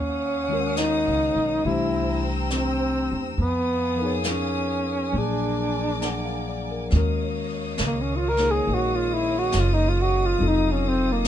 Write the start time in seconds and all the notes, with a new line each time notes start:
Already playing: D#2 C#4 C#5 F5 F#5 D#6
0.49 D#3 G#3 C#4 F#4
0.53 A#4
0.77 D#4, snare, hi-hat pedal
1.07 C#2
1.35 B1
1.63 C2 E3 A3 D4 E4 G4 C5 G5 A#5 E6, brush sweep
2.50 C4, snare, hi-hat pedal
3.12 E2
3.37 F2 B3 F5 G#5 D#6, brush sweep
3.41 B3
3.96 F3 A#4
4.02 D#4 G#4
4.06 C#5
4.24 snare, hi-hat pedal
4.30 C#4
5.12 A#1 F3 F#3 A#3 D4 A#4 D5 D6, brush sweep
5.18 D4 G#4
6.02 F#5, snare, hi-hat pedal
6.25 F5
6.49 D5
6.71 A#4
6.90 D#2 D#3 G#3 C#5 D#5 F5 D#6, brush sweep, snare
6.95 C#4 F#4 A#4
7.78 C#2, snare, hi-hat pedal
7.86 A#3
8.02 C#4
8.16 F4
8.29 A#4
8.37 A#3 D#4, snare
8.41 G#4 A#4
8.51 G#4
8.65 A#1, brush sweep
8.74 F#4
8.95 F4
9.14 E4
9.39 F#4
9.52 F#1, snare, hi-hat pedal
9.60 F4
9.74 D#4
9.89 F4
10.01 F#4
10.25 F4
10.38 F1 F#3 C4 D#4 F4 A4, brush sweep
10.43 A4
10.48 D#4
10.71 C#4
10.89 C4
11.12 A#3
11.25 snare, hi-hat pedal